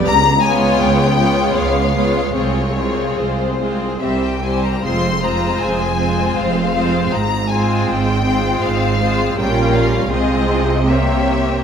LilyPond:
<<
  \new Staff \with { instrumentName = "Violin section" } { \time 3/4 \key f \minor \tempo 4 = 79 bes''8 aes''8 g''4 f''4 | des''4 c''4 e''16 g''16 aes''16 bes''16 | c'''8 bes''8 aes''4 f''4 | bes''8 aes''8 g''4 f''4 |
g''8 f''8 ees''4 e''4 | }
  \new Staff \with { instrumentName = "Violin section" } { \time 3/4 \key f \minor r8 <f' des''>4 <f' des''>4 <f' des''>8 | <f' aes'>8 <f' aes'>4 <f' aes'>8 <g' c''>8 <g' c''>8 | <f' c''>8 <f' c''>4 <f' c''>4 <f' c''>8 | r8 <f' c''>4 <f' c''>4 <f' c''>8 |
<f' bes'>4 <f' aes'>4 <g' des''>4 | }
  \new Staff \with { instrumentName = "Viola section" } { \time 3/4 \key f \minor r8 <aes ces'>4 <aes ces'>4 <aes ces'>8 | <aes c'>8 <aes c'>4 <aes c'>8 <g c'>8 <g c'>8 | <aes c'>8 <aes c'>4 <aes c'>4 <aes c'>8 | r8 <aes c'>4 <aes c'>4 <aes c'>8 |
<g des'>4 <aes c'>4 <bes c'>4 | }
  \new Staff \with { instrumentName = "Cello section" } { \clef bass \time 3/4 \key f \minor des,4 des,4 des,4 | c,4 c,4 c,4 | f,4 f,4 f,4 | aes,4 aes,4 aes,4 |
bes,4 c2 | }
  \new Staff \with { instrumentName = "Double bass section" } { \clef bass \time 3/4 \key f \minor des,4 des,4 des,4 | c,4 c,4 c,4 | f,,4 f,,4 f,,4 | aes,,4 aes,,4 aes,,4 |
bes,,4 c,2 | }
>>